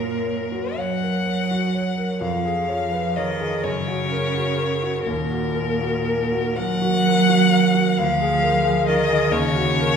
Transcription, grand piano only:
Already playing: F#2 F#4 C#5
0.00 A#4
0.25 C#5
0.52 F#4
0.78 C#5
1.02 A#4
1.27 C#5
1.51 F#4
1.75 C#5
1.98 A#4
2.21 F2
2.45 G#4
2.68 C#5
2.92 B4
3.17 C#5
3.41 G#4
3.64 F#2
3.88 F#4
4.11 A#4
4.34 F#4
4.58 A#4
4.83 F#4
5.07 D#2
5.31 F#4
5.55 A#4
5.81 F#4
6.06 A#4
6.32 F#4
6.58 A#4
6.82 F#4
7.06 A#4
7.29 F#4
7.52 A#4
7.74 F#4
7.98 D2
8.21 G#4
8.42 A#4
8.65 G#4
8.87 A#4
9.09 G#4
9.31 D#2
9.55 F#4
9.80 A#4

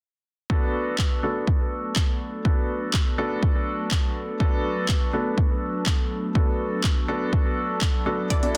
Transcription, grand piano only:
0.50 B3 D4 F#4 A4
1.23 B3 D4 F#4 A4
2.45 B3 D4 F#4 A4
3.18 B3 D4 F#4 A4
4.40 B3 D4 F#4 A4
5.13 B3 D4 F#4 A4
6.35 B3 D4 F#4 A4
7.08 B3 D4 F#4 A4
8.06 B3 D4 F#4 A4
8.30 D4 E4 F#4 A4

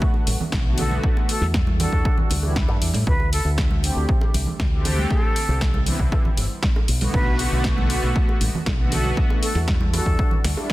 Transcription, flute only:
0.78 A4
1.29 A4
1.80 A4
3.07 B4
3.33 A4
5.11 A4
7.14 B4
8.92 A4
9.43 A4
9.94 A4

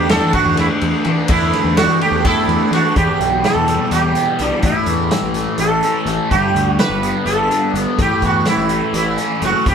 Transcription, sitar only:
0.10 A4
0.34 F#4
0.60 E4
1.31 E4
1.77 F#4
2.02 G4
2.25 E4 A4
2.74 F#4
2.97 G4
3.45 A4
3.92 G4
4.41 D4
4.66 E4
5.59 A4
6.31 G4
6.68 F#4
6.79 B4
7.26 A4
8.02 G4
8.26 F#4
8.48 E4
8.97 E4
9.45 F#4
9.68 G4

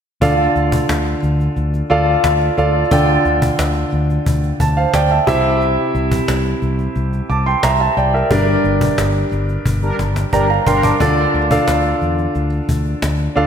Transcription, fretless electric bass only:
0.22 D2
0.56 D2
0.89 D2
1.23 D2
1.57 D2
1.90 D2
2.24 D2
2.58 D2
2.91 D2
3.25 D2
3.59 D2
3.93 D2
4.26 D2
4.60 D2
4.94 D2
5.27 C2
5.95 C2
6.28 C2
6.62 C2
6.96 C2
7.30 C2
7.63 C2
7.97 C2
8.31 G1
8.64 G1
8.98 G1
9.32 G1
9.66 G1
9.99 G1
10.33 G1
10.67 G1
11.00 D2
11.34 D2
11.68 D2
12.02 E2
12.35 D2
12.69 D2
13.03 D2
13.36 D2

